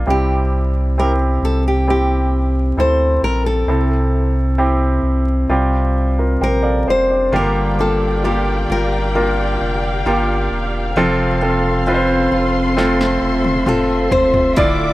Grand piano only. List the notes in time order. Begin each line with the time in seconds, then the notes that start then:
0.07 C3 G3 C4 E4 G4
0.98 C4 E4 G4
1.87 C4 E4 G4
2.77 C4 E4 A4
3.68 C3 C4 E4 A4
4.58 C4 E4 G4
5.49 C3 G3 C4 F4 G4
6.19 F4 A#4
6.41 G4 C5 G5
6.63 A4 D5 F5
6.88 G4 C5 D5
7.10 D4 G4
7.32 G2 D3 A#3 F4 G4
7.79 A#3 F4 G4
8.24 A#3 F4 G4
9.15 A#3 F4 A#4
10.06 A#3 F4 G4
10.97 C3 C4 F4 A4
11.41 C4 F4 A4
11.87 C4 F4 B4
11.94 C5
12.77 C4 F4 A4
13.67 C4 F4 A4
14.57 A2 E4 F4 D5